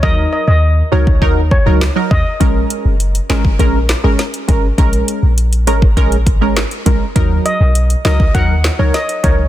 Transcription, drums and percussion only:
0.03 kick loud
1.07 kick medium
1.22 kick medium
1.51 kick medium
1.81 snare loud
1.81 clap medium
2.11 kick medium
2.41 kick loud
2.41 closed hi-hat medium
2.70 closed hi-hat medium
3.00 closed hi-hat medium
3.15 closed hi-hat soft
3.30 snare loud
3.30 clap medium
3.30 closed hi-hat medium
3.45 kick medium
3.59 kick medium
3.59 closed hi-hat medium
3.89 snare loud
3.89 clap medium
3.89 closed hi-hat medium
4.19 snare medium
4.19 closed hi-hat medium
4.34 closed hi-hat soft
4.49 kick medium
4.49 closed hi-hat medium
4.78 kick loud
4.78 closed hi-hat medium
4.93 closed hi-hat medium
5.08 closed hi-hat medium
5.38 closed hi-hat medium
5.53 closed hi-hat soft
5.67 closed hi-hat medium
5.82 kick medium
5.97 kick medium
5.97 closed hi-hat medium
6.12 closed hi-hat soft
6.27 kick medium
6.27 closed hi-hat medium
6.57 cross-stick loud
6.57 snare loud
6.57 clap medium
6.57 closed hi-hat medium
6.71 closed hi-hat soft
6.86 kick medium
6.86 closed hi-hat medium
7.16 kick loud
7.16 closed hi-hat medium
7.46 closed hi-hat medium
7.75 closed hi-hat medium
7.90 closed hi-hat soft
8.05 snare loud
8.05 clap medium
8.05 closed hi-hat medium
8.20 kick medium
8.35 kick medium
8.35 closed hi-hat medium
8.64 snare loud
8.64 clap medium
8.64 closed hi-hat medium
8.94 snare medium
8.94 closed hi-hat medium
9.09 closed hi-hat soft
9.24 kick medium
9.24 closed hi-hat medium

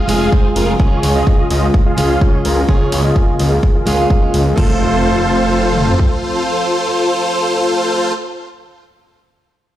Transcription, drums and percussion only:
0.09 open hi-hat loud
0.32 kick loud
0.56 open hi-hat medium
0.80 kick loud
1.03 open hi-hat loud
1.27 kick loud
1.51 open hi-hat medium
1.74 kick loud
1.98 open hi-hat loud
2.21 kick loud
2.45 open hi-hat medium
2.69 kick loud
2.92 open hi-hat loud
3.16 kick loud
3.39 open hi-hat medium
3.63 kick loud
3.87 open hi-hat loud
4.10 kick loud
4.34 open hi-hat medium
4.58 kick loud
4.58 crash medium
5.76 mid tom medium
5.88 floor tom medium
5.99 kick medium

